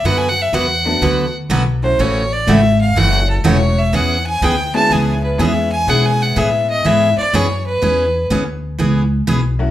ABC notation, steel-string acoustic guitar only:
X:1
M:4/4
L:1/8
Q:"Swing" 1/4=124
K:Emix
V:1 name="Steel-string acoustic guitar"
[D,F,B,FB] z [D,F,B,FB] z [D,F,B,FB] z [D,F,B,FB] z | [C,E,A,CF] z [C,E,A,CF] z [C,E,A,CF] z [C,E,A,CF] z | [E,B,CG] z [E,B,CG] z [E,B,CG] z [E,B,CG] z | [E,B,CG] z [E,B,CG] z [E,B,CG] z [E,B,CG] z |
[E,B,CG] z [E,B,CG] z [E,B,CG] z [E,B,CG] z |]